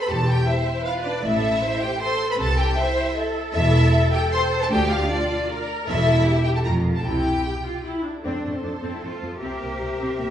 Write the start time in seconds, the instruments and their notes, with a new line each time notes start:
0.01 violin section B5
0.08 double bass section E1, cello section E2, viola section G4, violin section A4 A5
0.28 violin section G4 G5
0.47 violin section E4 E5, viola section C5
0.84 violin section F4 F5, viola section B4
1.03 violin section D4 D5
1.23 double bass section A1, cello section A2, violin section E4 E5, viola section A4
1.62 viola section C5
1.81 violin section G4 G5
2.01 viola section A4, violin section C5 C6
2.30 violin section B4 B5
2.38 double bass section C2, cello section C3, viola section A4, violin section A4 A5
2.58 violin section G4 G5
2.77 violin section E4 E5, viola section C5
3.16 viola section A4
3.54 double bass section E1, cello section E2, violin section E4 E5
4.13 violin section G4 G5
4.33 violin section C5 C6
4.61 violin section A4 A5
4.70 cello section D2, double bass section D2, viola section G4, violin section G4 G5
4.90 violin section F4 F5
5.09 violin section D4 D5, viola section F4
5.49 viola section A#4
5.87 double bass section E1, cello section E2, violin section E4 E5, viola section A4
6.27 viola section G4
6.45 violin section G4 G5
6.55 violin section A4 A5
6.65 double bass section F1, cello section F2, viola section F4, violin section A#4 A#5
6.95 violin section A4 A5
7.04 double bass section C2, cello section C3, viola section E4, violin section G4 G5
7.45 viola section G4
7.65 viola section F4
7.84 viola section E4
8.05 viola section D4
8.24 double bass section F2, viola section C4 A4, cello section D4, violin section C5
8.44 double bass section F2, viola section A3
8.54 cello section C4
8.63 double bass section F2, viola section F3, cello section D4, violin section A4
8.83 double bass section F2, viola section C4
8.93 cello section E4
9.02 double bass section F2, viola section A3, cello section F4
9.22 double bass section F2, viola section F3
9.40 double bass section C2, viola section C4 A#4, cello section G4, violin section C5 E5
9.61 double bass section C2, viola section A#3
9.80 double bass section C2, viola section G3
10.00 double bass section C2, viola section C4
10.19 double bass section C2, viola section A#3, violin section E5